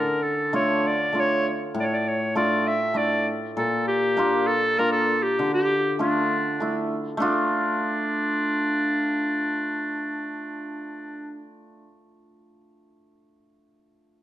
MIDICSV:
0, 0, Header, 1, 3, 480
1, 0, Start_track
1, 0, Key_signature, -1, "minor"
1, 0, Tempo, 603622
1, 1392, Time_signature, 3, 2, 24, 8
1, 11314, End_track
2, 0, Start_track
2, 0, Title_t, "Clarinet"
2, 0, Program_c, 0, 71
2, 0, Note_on_c, 0, 70, 86
2, 179, Note_on_c, 0, 69, 85
2, 190, Note_off_c, 0, 70, 0
2, 425, Note_off_c, 0, 69, 0
2, 439, Note_on_c, 0, 73, 94
2, 689, Note_on_c, 0, 74, 94
2, 701, Note_off_c, 0, 73, 0
2, 949, Note_on_c, 0, 73, 111
2, 961, Note_off_c, 0, 74, 0
2, 1171, Note_off_c, 0, 73, 0
2, 1433, Note_on_c, 0, 74, 87
2, 1451, Note_on_c, 0, 73, 78
2, 1463, Note_off_c, 0, 74, 0
2, 1539, Note_on_c, 0, 74, 86
2, 1551, Note_off_c, 0, 73, 0
2, 1653, Note_on_c, 0, 73, 76
2, 1665, Note_off_c, 0, 74, 0
2, 1879, Note_off_c, 0, 73, 0
2, 1884, Note_on_c, 0, 74, 99
2, 2128, Note_on_c, 0, 76, 100
2, 2140, Note_off_c, 0, 74, 0
2, 2365, Note_on_c, 0, 74, 99
2, 2377, Note_off_c, 0, 76, 0
2, 2600, Note_off_c, 0, 74, 0
2, 2844, Note_on_c, 0, 69, 90
2, 3063, Note_off_c, 0, 69, 0
2, 3084, Note_on_c, 0, 67, 102
2, 3556, Note_on_c, 0, 69, 112
2, 3568, Note_off_c, 0, 67, 0
2, 3805, Note_on_c, 0, 70, 127
2, 3817, Note_off_c, 0, 69, 0
2, 3912, Note_off_c, 0, 70, 0
2, 3916, Note_on_c, 0, 69, 97
2, 4158, Note_on_c, 0, 67, 97
2, 4169, Note_off_c, 0, 69, 0
2, 4397, Note_off_c, 0, 67, 0
2, 4405, Note_on_c, 0, 67, 104
2, 4736, Note_off_c, 0, 67, 0
2, 4780, Note_on_c, 0, 62, 83
2, 5457, Note_off_c, 0, 62, 0
2, 5720, Note_on_c, 0, 62, 90
2, 9201, Note_off_c, 0, 62, 0
2, 11314, End_track
3, 0, Start_track
3, 0, Title_t, "Hammered dulcimer"
3, 0, Program_c, 1, 15
3, 0, Note_on_c, 1, 50, 74
3, 421, Note_on_c, 1, 57, 85
3, 426, Note_on_c, 1, 62, 67
3, 427, Note_on_c, 1, 65, 81
3, 666, Note_off_c, 1, 57, 0
3, 669, Note_off_c, 1, 62, 0
3, 669, Note_off_c, 1, 65, 0
3, 896, Note_on_c, 1, 57, 61
3, 910, Note_on_c, 1, 62, 59
3, 912, Note_on_c, 1, 65, 64
3, 1144, Note_off_c, 1, 57, 0
3, 1151, Note_off_c, 1, 62, 0
3, 1152, Note_off_c, 1, 65, 0
3, 1387, Note_on_c, 1, 45, 84
3, 1432, Note_off_c, 1, 50, 0
3, 1872, Note_on_c, 1, 57, 81
3, 1875, Note_on_c, 1, 62, 64
3, 1877, Note_on_c, 1, 65, 84
3, 2113, Note_off_c, 1, 57, 0
3, 2114, Note_off_c, 1, 62, 0
3, 2115, Note_off_c, 1, 65, 0
3, 2337, Note_on_c, 1, 57, 63
3, 2342, Note_on_c, 1, 62, 61
3, 2347, Note_on_c, 1, 64, 65
3, 2586, Note_off_c, 1, 57, 0
3, 2588, Note_off_c, 1, 62, 0
3, 2591, Note_off_c, 1, 64, 0
3, 2837, Note_on_c, 1, 46, 78
3, 2874, Note_off_c, 1, 45, 0
3, 3313, Note_on_c, 1, 58, 79
3, 3320, Note_on_c, 1, 62, 74
3, 3329, Note_on_c, 1, 65, 96
3, 3554, Note_off_c, 1, 58, 0
3, 3558, Note_off_c, 1, 62, 0
3, 3562, Note_off_c, 1, 65, 0
3, 3804, Note_on_c, 1, 58, 64
3, 3811, Note_on_c, 1, 62, 56
3, 3813, Note_on_c, 1, 65, 68
3, 4040, Note_off_c, 1, 58, 0
3, 4044, Note_off_c, 1, 62, 0
3, 4044, Note_off_c, 1, 65, 0
3, 4287, Note_on_c, 1, 50, 84
3, 4316, Note_off_c, 1, 46, 0
3, 4764, Note_on_c, 1, 57, 77
3, 4768, Note_on_c, 1, 62, 63
3, 4774, Note_on_c, 1, 65, 85
3, 5000, Note_off_c, 1, 57, 0
3, 5002, Note_off_c, 1, 62, 0
3, 5005, Note_off_c, 1, 65, 0
3, 5250, Note_on_c, 1, 57, 64
3, 5253, Note_on_c, 1, 62, 48
3, 5261, Note_on_c, 1, 64, 71
3, 5484, Note_off_c, 1, 57, 0
3, 5485, Note_off_c, 1, 62, 0
3, 5489, Note_off_c, 1, 64, 0
3, 5704, Note_on_c, 1, 57, 100
3, 5727, Note_on_c, 1, 62, 93
3, 5738, Note_on_c, 1, 65, 108
3, 5756, Note_off_c, 1, 50, 0
3, 9379, Note_off_c, 1, 57, 0
3, 9402, Note_off_c, 1, 62, 0
3, 9413, Note_off_c, 1, 65, 0
3, 11314, End_track
0, 0, End_of_file